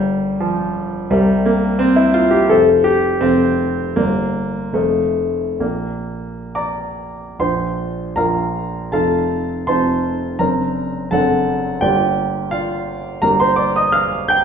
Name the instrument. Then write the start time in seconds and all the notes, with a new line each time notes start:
grand piano
Already playing: G1 G3 A#4 D5 F5
0.40 F3
1.10 C2 G3 A#4 C5 E5
1.46 A#3
1.79 C4
1.96 E4
2.14 F4
2.31 G4
2.49 F1 A4 C5 F5
2.84 G4
3.21 F1 C4 A4 C5 F5
3.96 G1 A#3 A#4 D5
4.73 F1 A3 C5 D#5 F5
5.60 A#1 A#3 A#4 D5 F5
6.55 D5 A#5 D6
7.39 A#1 D4 F4 C5 C6
8.16 A#1 D4 F4 A#4 F5 A#5
8.92 F1 C4 D#4 F4 A4 F5 A5
9.67 F1 C4 D#4 F4 C5 A5 C6
10.39 F#1 C4 D4 A#4 A#5
11.11 F#1 C4 D4 A4 F#5 A5
11.81 G1 A#3 D4 F4 G4 D5 G5
12.51 F4 D5 F5
13.22 G1 A#3 D4 G4 A#4 A#5
13.40 C5 C6
13.56 D5 D6
13.76 D#5 D#6
13.92 F5 F6
14.28 G5 G6